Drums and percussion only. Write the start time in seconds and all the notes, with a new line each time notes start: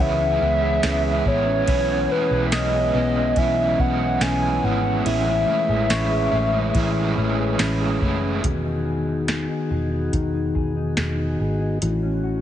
0.83 snare, ride, tambourine
1.26 kick
1.68 kick, ride
2.52 snare, ride, tambourine
3.36 kick, ride
3.79 kick
4.21 snare, ride, tambourine
5.06 ride
5.90 snare, ride, tambourine
6.75 kick, ride
7.59 snare, ride, tambourine
8.02 kick
8.44 kick, closed hi-hat
9.28 snare, closed hi-hat
10.13 kick, closed hi-hat
10.55 kick
10.97 snare, closed hi-hat
11.82 closed hi-hat